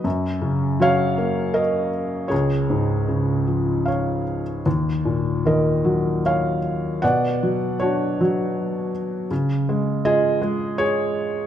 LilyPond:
<<
  \new Staff \with { instrumentName = "Felt piano" } { \time 3/4 \key cis \mixolydian \tempo 4 = 79 r4 <cis'' eis''>4 <ais' dis''>4 | <gis' cis''>2 <cis'' eis''>8. r16 | r4 <ais' dis''>4 <cis'' eis''>4 | <d'' fis''>4 <fis' cis''>4. r8 |
r4 <gis' dis''>4 <gis' cis''>4 | }
  \new Staff \with { instrumentName = "Felt piano" } { \clef bass \time 3/4 \key cis \mixolydian fis,8 cis8 fis8 ais4. | cis,8 gis,8 cis8 eis4. | dis,8 ais,8 dis8 fis4. | b,8 fis8 d'8 fis4. |
cis8 gis8 eis'8 gis4. | }
>>